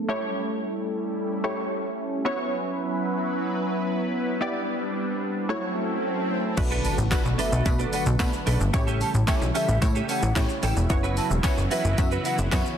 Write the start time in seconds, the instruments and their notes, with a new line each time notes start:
Already playing: supersaw synth A3 A4
0.09 supersaw synth G3 C#4 E4, synth stab A3 E4 G4 C#5
1.44 synth stab A3 E4 G4 C#5
2.25 supersaw synth F#3 B3 E4 B4, synth stab B3 E4 F#4 C#5, swell
4.41 supersaw synth G3 D4, synth stab B3 E4 G4 D5
5.49 supersaw synth F#3 A3 C#4 E4 A4, synth stab A3 E4 F#4 C#5
6.57 analog synth bass B1, supersaw synth D3 F#3 A3 B3 F#4, synth stab A3 B3 D4 F#4 B4, muted clean electric guitar stroke, kick, closed hi-hat, crash, tambourine, impact, shaker
6.71 clean electric guitar D4 A4 B4, shaker
6.84 clean electric guitar D4 A4 B4, flute A5, open hi-hat, tambourine, shaker
6.98 analog synth bass A1, muted clean electric guitar stroke, shaker
7.11 synth stab A3 B3 D4 F#4 B4, muted clean electric guitar stroke, kick, snare, clap, closed hi-hat, tambourine, shaker
7.25 analog synth bass B1, muted clean electric guitar stroke, shaker
7.38 clean electric guitar D4 A4 B4, flute E5, open hi-hat, tambourine, shaker
7.52 analog synth bass B1, clean electric guitar D4 A4 B4, shaker
7.65 analog synth bass B2, synth stab A3 B3 D4 F#4 B4, muted clean electric guitar stroke, kick, closed hi-hat, tambourine, shaker
7.79 clean electric guitar D4 A4 B4, shaker
7.92 clean electric guitar D4 A4 B4, flute F#5, open hi-hat, tambourine, shaker
8.06 analog synth bass B1, muted clean electric guitar stroke, shaker
8.19 analog synth bass B2, synth stab A3 B3 D4 F#4 B4, kick, snare, clap, closed hi-hat, tambourine, shaker
8.33 muted clean electric guitar stroke, shaker
8.46 analog synth bass B1, clean electric guitar D4 A4 B4, open hi-hat, tambourine, shaker
8.60 analog synth bass G1, muted clean electric guitar stroke, shaker
8.73 analog synth bass A1, supersaw synth C#3 E3 G3 E4, synth stab A3 C#4 E4 G4 C#5, muted clean electric guitar stroke, kick, closed hi-hat, tambourine, shaker
8.87 clean electric guitar C#4 G4 A4, shaker
9.00 clean electric guitar C#4 G4 A4, flute A5, open hi-hat, tambourine, shaker
9.14 analog synth bass A1, muted clean electric guitar stroke, shaker
9.27 synth stab A3 C#4 E4 G4 C#5, muted clean electric guitar stroke, kick, snare, clap, closed hi-hat, tambourine, shaker
9.41 analog synth bass B1, muted clean electric guitar stroke, shaker
9.54 clean electric guitar C#4 G4 A4, flute E5, open hi-hat, tambourine, shaker
9.68 analog synth bass A1, clean electric guitar C#4 G4 A4, shaker
9.82 analog synth bass A2, synth stab A3 C#4 E4 G4 C#5, muted clean electric guitar stroke, kick, closed hi-hat, tambourine, shaker
9.95 clean electric guitar C#4 G4 A4, shaker
10.09 clean electric guitar C#4 G4 A4, flute F#5, open hi-hat, tambourine, shaker
10.22 analog synth bass A1, muted clean electric guitar stroke, shaker
10.35 analog synth bass A2, synth stab A3 C#4 E4 G4 C#5, kick, snare, clap, closed hi-hat, tambourine, shaker
10.49 muted clean electric guitar stroke, shaker
10.63 analog synth bass A1, clean electric guitar C#4 G4 A4, flute G5, open hi-hat, tambourine, shaker
10.76 analog synth bass E1, muted clean electric guitar stroke, shaker
10.90 supersaw synth E3 F#3 B3, synth stab B3 C#4 E4 F#4 C#5, muted clean electric guitar stroke, kick, closed hi-hat, tambourine, shaker
11.03 clean electric guitar E4 F#4 B4, shaker
11.17 clean electric guitar E4 F#4 B4, flute A5, open hi-hat, tambourine, shaker
11.30 analog synth bass E1, muted clean electric guitar stroke, shaker
11.43 synth stab B3 C#4 E4 F#4 C#5, muted clean electric guitar stroke, kick, snare, clap, closed hi-hat, tambourine, shaker
11.57 analog synth bass F#1, muted clean electric guitar stroke, shaker
11.71 clean electric guitar E4 F#4 B4, flute E5, open hi-hat, tambourine, shaker
11.84 analog synth bass F#1, clean electric guitar E4 F#4 B4, shaker
11.98 analog synth bass F#2, synth stab B3 C#4 E4 F#4 E5, kick, closed hi-hat, tambourine, shaker
12.11 clean electric guitar E4 F#4 B4, shaker
12.25 clean electric guitar E4 F#4 B4, flute F#5, open hi-hat, tambourine, shaker
12.38 analog synth bass F#1, muted clean electric guitar stroke, shaker
12.52 analog synth bass F#2, synth stab B3 C#4 E4 F#4 C#5, kick, snare, clap, closed hi-hat, tambourine, shaker
12.65 muted clean electric guitar stroke, shaker